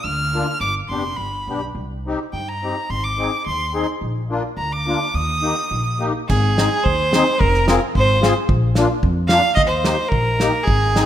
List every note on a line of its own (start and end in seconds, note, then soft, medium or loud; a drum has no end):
0.04 0.41 D2 medium
0.04 0.60 F6 medium
0.33 0.46 A#3 medium
0.33 0.46 D4 medium
0.33 0.47 F4 medium
0.60 0.80 G1 medium
0.60 0.74 D6 medium
0.88 1.15 F1 medium
0.88 1.03 B3 soft
0.88 1.04 D4 soft
0.88 1.04 G4 medium
0.88 1.18 C6 medium
1.16 1.44 G1 medium
1.16 1.61 B5 medium
1.47 1.73 B1 medium
1.47 1.61 B3 soft
1.47 1.61 D4 soft
1.47 1.62 G4 soft
1.75 2.13 C2 medium
2.06 2.19 C4 medium
2.06 2.19 D#4 soft
2.06 2.20 G4 medium
2.33 2.70 G2 medium
2.33 2.50 G5 medium
2.48 2.92 A#5 medium
2.63 2.75 C4 soft
2.63 2.76 D#4 soft
2.63 2.76 G4 medium
2.90 3.26 G#1 medium
2.90 3.06 C6 medium
3.04 3.46 D6 medium
3.18 3.31 C4 soft
3.18 3.31 D#4 soft
3.18 3.32 G#4 soft
3.46 3.83 D#2 medium
3.46 3.85 C6 medium
3.73 3.86 C4 soft
3.73 3.87 D#4 soft
3.73 3.87 G#4 medium
4.01 4.38 A#1 medium
4.30 4.43 A#3 medium
4.30 4.43 D4 medium
4.30 4.43 F4 medium
4.57 4.94 D2 medium
4.57 4.74 A#5 medium
4.72 5.16 D6 medium
4.86 4.99 A#3 medium
4.86 4.99 D4 medium
4.86 4.99 F4 medium
5.14 5.51 D#2 medium
5.14 6.00 D#6 loud
5.42 5.55 A#3 medium
5.42 5.55 D#4 soft
5.42 5.56 G4 medium
5.71 6.08 A#1 medium
5.99 6.12 A#3 medium
5.99 6.13 D#4 medium
5.99 6.13 G4 medium
6.28 6.65 G#1 medium
6.28 6.85 G#4 medium
6.28 kick medium
6.28 crash medium
6.56 6.69 C4 medium
6.56 6.69 D#4 soft
6.56 6.70 G#4 medium
6.56 snare medium
6.84 7.21 D#2 medium
6.84 7.42 C5 loud
6.84 kick medium
7.12 7.25 C4 medium
7.12 7.25 D#4 medium
7.12 7.25 G#4 medium
7.12 snare medium
7.40 7.76 F1 medium
7.40 7.68 A#4 loud
7.40 kick medium
7.54 snare soft
7.67 7.79 C4 medium
7.67 7.80 F4 medium
7.67 7.80 G#4 medium
7.67 7.81 A#4 medium
7.67 snare medium
7.95 8.30 G#1 medium
7.95 8.34 C5 medium
7.95 kick medium
8.21 8.34 C4 medium
8.21 8.34 F4 medium
8.21 8.34 G#4 medium
8.21 snare medium
8.49 8.84 A#1 medium
8.49 kick medium
8.75 8.88 A#3 medium
8.75 8.88 D4 medium
8.75 8.89 F4 medium
8.75 snare medium
9.03 9.38 F2 loud
9.03 kick medium
9.28 9.42 A#3 medium
9.28 9.42 D4 medium
9.28 9.42 F4 medium
9.28 9.54 F5 medium
9.28 snare medium
9.55 9.92 D#2 medium
9.55 9.61 D#5 loud
9.55 kick medium
9.67 10.10 C5 medium
9.83 9.96 A#3 medium
9.83 9.97 D#4 medium
9.83 9.97 G4 medium
9.83 snare medium
10.08 10.48 A#1 medium
10.08 10.65 A#4 medium
10.08 kick medium
10.40 10.52 A#3 medium
10.40 10.52 D#4 medium
10.40 10.52 G4 medium
10.40 snare medium
10.64 11.03 G#1 medium
10.64 11.06 G#4 medium
10.64 kick medium
10.94 11.06 C4 medium
10.94 11.06 D#4 medium
10.94 11.06 G#4 medium
10.94 snare medium